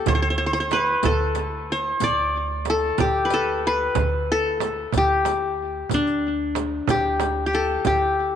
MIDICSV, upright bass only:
0, 0, Header, 1, 2, 480
1, 0, Start_track
1, 0, Tempo, 648859
1, 54, Time_signature, 6, 3, 24, 8
1, 6181, End_track
2, 0, Start_track
2, 0, Title_t, "Upright bass"
2, 0, Program_c, 0, 32
2, 52, Note_on_c, 0, 38, 83
2, 697, Note_off_c, 0, 38, 0
2, 769, Note_on_c, 0, 38, 79
2, 1416, Note_off_c, 0, 38, 0
2, 1495, Note_on_c, 0, 38, 83
2, 2139, Note_off_c, 0, 38, 0
2, 2212, Note_on_c, 0, 38, 79
2, 2857, Note_off_c, 0, 38, 0
2, 2930, Note_on_c, 0, 38, 88
2, 3576, Note_off_c, 0, 38, 0
2, 3656, Note_on_c, 0, 38, 85
2, 4299, Note_off_c, 0, 38, 0
2, 4376, Note_on_c, 0, 38, 78
2, 5019, Note_off_c, 0, 38, 0
2, 5091, Note_on_c, 0, 38, 81
2, 5736, Note_off_c, 0, 38, 0
2, 5812, Note_on_c, 0, 38, 76
2, 6181, Note_off_c, 0, 38, 0
2, 6181, End_track
0, 0, End_of_file